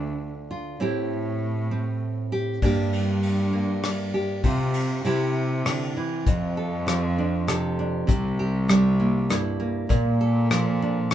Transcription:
Already playing: cello D2, nylon-string guitar D3 D4 F4
0.51 nylon-string guitar F4
0.80 nylon-string guitar A2 C4 E4 G4, cello A2
1.71 nylon-string guitar C4
2.32 nylon-string guitar G4
2.62 cello G2, nylon-string guitar G2 A#3 D4 G4, kick, ride
2.93 ride
3.23 ride
3.53 nylon-string guitar A#3
3.83 cross-stick, ride
4.14 nylon-string guitar G4
4.44 cello C3, nylon-string guitar C3 C4 F4, kick, ride
4.74 ride
5.04 nylon-string guitar C3 C4 E4 G4, cello C3, ride
5.65 nylon-string guitar D3, cross-stick, ride
5.97 nylon-string guitar E3
6.26 cello F2, nylon-string guitar F2, kick, closed hi-hat
6.57 nylon-string guitar A4
6.86 nylon-string guitar F3, cross-stick, closed hi-hat
7.18 nylon-string guitar D4
7.48 nylon-string guitar C3 A4, cross-stick, closed hi-hat
7.79 nylon-string guitar D4
8.07 cello C2, nylon-string guitar C3, kick, closed hi-hat
8.39 nylon-string guitar G4
8.68 nylon-string guitar G3, cross-stick, closed hi-hat
9.00 nylon-string guitar A#3
9.29 nylon-string guitar G2 E4, cross-stick, closed hi-hat
9.60 nylon-string guitar A#3
9.89 nylon-string guitar A#2, cello A#2, kick, closed hi-hat
10.21 nylon-string guitar A4
10.51 nylon-string guitar F3, cross-stick, closed hi-hat
10.82 nylon-string guitar D4
11.11 cross-stick, closed hi-hat

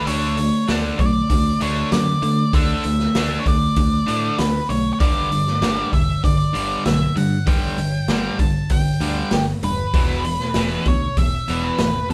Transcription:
0.05 picked electric bass D2, overdriven electric guitar D3 A3 D4, lead electric guitar C#5, open hi-hat
0.10 overdriven electric guitar D3 A3 D4
0.36 overdriven electric guitar D3 A3, open hi-hat
0.40 overdriven electric guitar D3 A3
0.68 picked electric bass D2, overdriven electric guitar D3 A3 D4, snare, open hi-hat
0.98 picked electric bass B1, overdriven electric guitar D3 A3, lead electric guitar D5, kick, open hi-hat
1.30 picked electric bass D2, overdriven electric guitar D3 A3, kick, open hi-hat
1.60 picked electric bass D2, overdriven electric guitar D3 A3 D4, lead electric guitar C#5, open hi-hat
1.92 picked electric bass F#2, overdriven electric guitar D3 A3, lead electric guitar D5, snare, open hi-hat
2.22 overdriven electric guitar D3 A3, picked electric bass D3, open hi-hat
2.53 picked electric bass D2, overdriven electric guitar D3 A3 D4, lead electric guitar E5, kick, open hi-hat
2.84 picked electric bass D2, overdriven electric guitar D3 A3, open hi-hat
3.00 snare
3.15 picked electric bass D2, overdriven electric guitar D3 A3 D4, snare, open hi-hat
3.40 lead electric guitar C#5
3.46 picked electric bass D2, overdriven electric guitar D3 A3, lead electric guitar D5, kick, open hi-hat
3.76 picked electric bass D2, overdriven electric guitar D3 A3, kick, open hi-hat
4.06 picked electric bass A2, overdriven electric guitar D3 A3 D4, open hi-hat
4.38 picked electric bass D2, overdriven electric guitar D3 A3, lead electric guitar B4, snare, open hi-hat
4.69 picked electric bass B1, overdriven electric guitar D3 A3, lead electric guitar C#5, open hi-hat
4.93 lead electric guitar C#5
5.00 picked electric bass G1, overdriven electric guitar G2 D3 G3, lead electric guitar D5, kick, open hi-hat
5.31 overdriven electric guitar G2 D3, open hi-hat
5.47 snare
5.62 picked electric bass G1, overdriven electric guitar G2 D3 G3, snare, open hi-hat
5.92 picked electric bass E1, overdriven electric guitar G2 D3, lead electric guitar E5, kick, open hi-hat
6.24 picked electric bass G1, overdriven electric guitar G2 D3, lead electric guitar D5, kick, open hi-hat
6.53 picked electric bass G1, overdriven electric guitar G2 D3 G3, open hi-hat
6.85 picked electric bass B1, overdriven electric guitar G2 D3, lead electric guitar E5, snare, open hi-hat
7.16 overdriven electric guitar G2 D3, picked electric bass G2, lead electric guitar F#5, open hi-hat
7.47 picked electric bass G1, overdriven electric guitar G2 D3 G3, lead electric guitar G5, kick, open hi-hat
7.78 picked electric bass G1, overdriven electric guitar G2 D3, open hi-hat
8.08 picked electric bass G1, overdriven electric guitar G2 D3 G3, snare, open hi-hat
8.39 picked electric bass G1, overdriven electric guitar G2 D3, lead electric guitar A5, kick, open hi-hat
8.70 picked electric bass G1, overdriven electric guitar G2 D3, lead electric guitar G5, kick, open hi-hat
9.00 picked electric bass D2, overdriven electric guitar G2 D3 G3, open hi-hat
9.31 picked electric bass G1, overdriven electric guitar G2 D3, lead electric guitar G4, snare, open hi-hat
9.63 picked electric bass E1, overdriven electric guitar G2 D3, lead electric guitar B4, open hi-hat
9.94 picked electric bass E1, overdriven electric guitar E2 B2 E3, kick, open hi-hat
10.25 overdriven electric guitar E2 B2, open hi-hat
10.40 snare
10.54 picked electric bass E1, overdriven electric guitar E2 B2 E3, snare, open hi-hat
10.85 picked electric bass D2, overdriven electric guitar E2 B2, lead electric guitar C#5, kick, open hi-hat
11.17 picked electric bass E1, overdriven electric guitar E2 B2, lead electric guitar E5, kick, open hi-hat
11.48 picked electric bass E1, overdriven electric guitar E2 B2 E3, open hi-hat
11.64 lead electric guitar B4
11.78 picked electric bass G#1, overdriven electric guitar E2 B2, snare, open hi-hat
12.09 picked electric bass E2, overdriven electric guitar E2 B2, lead electric guitar A4, open hi-hat

